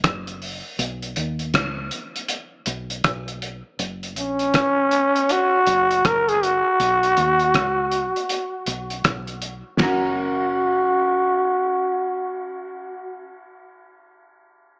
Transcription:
0.04 fingered electric bass F#1, kick, cross-stick, closed hi-hat
0.27 closed hi-hat
0.42 open hi-hat
0.79 fingered electric bass B1, closed hi-hat
1.02 closed hi-hat
1.16 fingered electric bass D#2, closed hi-hat
1.39 closed hi-hat
1.54 fingered electric bass C#2, kick, cross-stick, closed hi-hat
1.91 closed hi-hat
2.16 closed hi-hat
2.28 closed hi-hat
2.66 fingered electric bass B1, closed hi-hat
2.90 closed hi-hat
3.04 fingered electric bass B1, kick, cross-stick, closed hi-hat
3.28 closed hi-hat
3.42 closed hi-hat
3.79 fingered electric bass F#1, closed hi-hat
4.03 closed hi-hat
4.16 fingered electric bass A#1, trombone C#4, closed hi-hat
4.39 closed hi-hat
4.54 fingered electric bass G#1, kick, cross-stick, closed hi-hat
4.91 closed hi-hat
5.16 closed hi-hat
5.29 trombone F#4, closed hi-hat
5.67 fingered electric bass F#1, closed hi-hat
5.91 closed hi-hat
6.05 fingered electric bass F#1, trombone A#4, kick, cross-stick, closed hi-hat
6.29 trombone G#4, closed hi-hat
6.43 trombone F#4, closed hi-hat
6.80 fingered electric bass B1, closed hi-hat
7.03 closed hi-hat
7.17 fingered electric bass D#2, closed hi-hat
7.39 closed hi-hat
7.54 fingered electric bass C#2, kick, cross-stick, closed hi-hat
7.92 closed hi-hat
8.16 closed hi-hat
8.29 closed hi-hat
8.66 fingered electric bass B1, closed hi-hat
8.90 closed hi-hat
9.04 fingered electric bass B1, kick, cross-stick, closed hi-hat
9.27 closed hi-hat
9.42 closed hi-hat
9.78 fingered electric bass F#1, clean electric guitar C#4 F#4, trombone F#4, kick, snare, ride bell
9.83 clean electric guitar A#4

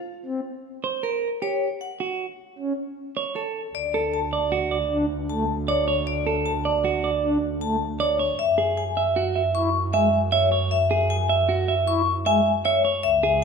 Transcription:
0.26 pipe organ C4
0.84 clean electric guitar C5
1.03 clean electric guitar A#4, vibraphone A#4
1.42 clean electric guitar G4, vibraphone C#5
1.81 vibraphone F#5
2.00 clean electric guitar F#4
2.58 pipe organ C#4
3.17 clean electric guitar C#5
3.36 vibraphone A4, clean electric guitar A4
3.75 double bass D2, vibraphone D5
3.94 clean electric guitar A4
4.14 vibraphone A5
4.33 clean electric guitar D5
4.52 clean electric guitar F#4
4.71 clean electric guitar D5
4.91 pipe organ D4
5.30 pipe organ A3, vibraphone A5
5.68 vibraphone C#5, clean electric guitar D5
5.88 clean electric guitar C#5
6.07 vibraphone D5
6.27 clean electric guitar A4
6.46 vibraphone A5
6.65 clean electric guitar D5
6.85 clean electric guitar F#4
7.04 clean electric guitar D5
7.23 pipe organ D4
7.61 pipe organ A3, vibraphone A5
8.00 vibraphone C#5, clean electric guitar D5
8.19 clean electric guitar C#5
8.39 double bass F#2, vibraphone E5
8.58 clean electric guitar G#4
8.77 vibraphone G#5
8.97 clean electric guitar E5
9.16 clean electric guitar F#4
9.36 clean electric guitar E5
9.55 pipe organ E4, vibraphone C#6
9.93 pipe organ G#3, clean electric guitar E5, vibraphone G#5
10.32 vibraphone C#5, clean electric guitar E5
10.52 clean electric guitar C#5
10.71 vibraphone E5
10.91 clean electric guitar G#4
11.10 vibraphone G#5
11.29 clean electric guitar E5
11.49 clean electric guitar F#4
11.68 clean electric guitar E5
11.87 pipe organ E4, vibraphone C#6
12.26 pipe organ G#3, clean electric guitar E5, vibraphone G#5
12.65 vibraphone C#5, clean electric guitar E5
12.85 clean electric guitar C#5
13.03 double bass C#2, vibraphone E5
13.23 clean electric guitar G#4

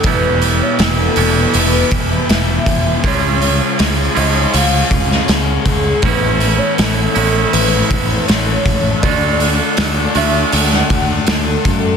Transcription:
0.03 picked electric bass E1, clean electric guitar E2 B2 E3 G3 D4 E4, string machine B4 E5 G5 D6, soft synth lead B4, kick, open hi-hat
0.42 open hi-hat
0.63 soft synth lead C#5
0.79 picked electric bass E1, soft synth lead A4, snare, open hi-hat
1.16 picked electric bass E1, clean electric guitar E2 B2 E3 G3 D4 E4, open hi-hat
1.54 picked electric bass E1, soft synth lead B4, open hi-hat
1.91 picked electric bass E1, kick, open hi-hat
2.29 picked electric bass E1, soft synth lead E5, snare, open hi-hat
2.66 picked electric bass E1, kick, open hi-hat
3.03 picked electric bass C#2, clean electric guitar C#3 F3 G#3 C#4 F4, string machine G#4 C#5 F5 C#6, kick, open hi-hat
3.07 soft synth lead C#5
3.42 open hi-hat
3.79 picked electric bass C#2, snare, open hi-hat
4.15 picked electric bass C#2, clean electric guitar C#3 F3 G#3 C#4 F4, soft synth lead D#5, open hi-hat
4.54 picked electric bass C#2, soft synth lead F5, open hi-hat
4.91 picked electric bass C#2, kick, open hi-hat
5.11 snare
5.28 picked electric bass C#2, soft synth lead G#4, snare, open hi-hat
5.65 picked electric bass C#2, kick, open hi-hat
6.02 picked electric bass A1, clean electric guitar A2 E3 B3 C#4 E4, distorted electric guitar A3, string machine A4 E5 B5, soft synth lead B4, kick, open hi-hat
6.40 open hi-hat
6.59 soft synth lead C#5
6.78 picked electric bass A1, soft synth lead A4, snare, open hi-hat
7.15 picked electric bass A1, clean electric guitar A2 E3 B3 C#4 E4, distorted electric guitar A3, open hi-hat
7.52 picked electric bass A1, soft synth lead B4, open hi-hat
7.91 picked electric bass A1, kick, open hi-hat
8.27 picked electric bass A1, soft synth lead C#5, snare, open hi-hat
8.66 picked electric bass A1, kick, open hi-hat
9.02 picked electric bass D2, clean electric guitar D3 A3 D4 F#4, soft synth lead D5, string machine D5 F#5 A5, kick, open hi-hat
9.40 open hi-hat
9.77 picked electric bass D2, snare, open hi-hat
10.15 picked electric bass D2, clean electric guitar D3 A3 D4 F#4, soft synth lead E5, open hi-hat
10.52 picked electric bass D2, soft synth lead F#5, open hi-hat
10.73 snare
10.90 picked electric bass D2, kick, open hi-hat
11.27 picked electric bass D2, soft synth lead A4, snare, open hi-hat
11.65 picked electric bass F#2, kick, open hi-hat

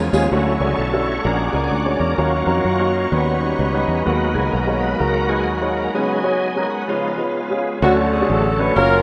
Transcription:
Already playing: tonewheel organ F3 B3 C#4 G#4, saxophone section G#3 B3 F4
0.13 fingered electric bass D#2, upright piano G#3 C#4 F4 G#4, tambourine
0.31 fingered electric bass D2, upright piano D3 A3 D4 F#4 C#5, tonewheel organ F#3 A3 C#4 E4 F#4, string section C#5 F#5 A5 C#6
0.60 fingered electric bass C#2, upright piano A3 D4 F#4 C#5, tonewheel organ G#4
0.78 fingered electric bass B1, tonewheel organ A4
0.92 upright piano A3 D4 F#4 A4
1.06 tonewheel organ C#5
1.24 fingered electric bass A#1, upright piano A#2 G#3 D4 F#4 A#4, tonewheel organ G#3 C#4 D4 F#4 A#4, string section G#5 A#5 D6
1.52 fingered electric bass C#2, upright piano G#3 D4 F#4 A#4, tonewheel organ G#4
1.71 fingered electric bass D2, tonewheel organ F#4
1.85 upright piano G#3 D4 F#4 C#5
2.00 fingered electric bass E2, tonewheel organ A#4
2.17 fingered electric bass D#2, upright piano D#3 A#3 D#4 F#4 C#5, tonewheel organ F#3 A#3 C#4 F4 F#4, string section C#5 D#5 C#6
2.46 fingered electric bass F2, upright piano A#3 D#4 F#4 C#5
2.64 fingered electric bass F#2, tonewheel organ F#4
2.79 upright piano A#3 D#4 F#4 C#5
2.93 tonewheel organ F4
3.11 fingered electric bass D#2, upright piano D#3 G3 C#4 D#4 B4, tonewheel organ G3 B3 C#4 F#4, string section F#5 B5
3.39 upright piano G3 C#4 D#4 B4
3.59 fingered electric bass C#2
3.73 upright piano G3 C#4 D#4 B4
3.88 fingered electric bass E2
4.05 fingered electric bass D#2, upright piano D#3 G#3 D#4 F#4 B4, tonewheel organ F#3 A#3 B3 F#4, string section F#5 G#5
4.34 fingered electric bass C#2, upright piano G#3 D#4 F#4 B4, tonewheel organ G#4
4.52 fingered electric bass B1, tonewheel organ A#4
4.67 upright piano G#3 D#4 F#4 C#5
4.81 tonewheel organ B4
4.99 fingered electric bass C#2, upright piano G#3 D#4 F#4 A#4, tonewheel organ F#4 A#4
5.28 upright piano G#3 D#4 F#4 B4, tonewheel organ G#4
5.47 fingered electric bass D#2, tonewheel organ F#4
5.61 upright piano G#3 D#4 F#4 C#5
5.77 tonewheel organ A#4
5.94 upright piano C#3 G#3 C#4 F#4 B4, tonewheel organ F#3 B3 D#4 G#4, string section C#5
6.23 upright piano G#3 C#4 F#4 C#5
6.42 tonewheel organ G#4
6.56 upright piano G#3 C#4 F#4 A#4
6.70 tonewheel organ F#4
6.88 upright piano C#3 G#3 C#4 F4 B4, tonewheel organ F3 G#3 B3 D#4 F4, string section C#5 F5
7.17 upright piano G#3 C#4 F4 B4
7.50 upright piano G#3 C#4 F4 G#4
7.82 fingered electric bass D2, tonewheel organ D3 F#3 A3 C#4 A4, upright piano D3 A3 C#4 D4 F#4 C#5, saxophone section A3 C#4 F#4
8.13 saxophone section G#4
8.21 upright piano A3 C#4 D4 F#4 G#4
8.30 fingered electric bass A1, saxophone section A4
8.58 upright piano A3 C#4 D4 F#4 B4, saxophone section C#5
8.76 fingered electric bass F#1, tonewheel organ F#3 A#3 C#4 F4 A#4, upright piano A#3 C#4 F4 F#4 C#5, saxophone section C#4 F4 A#4

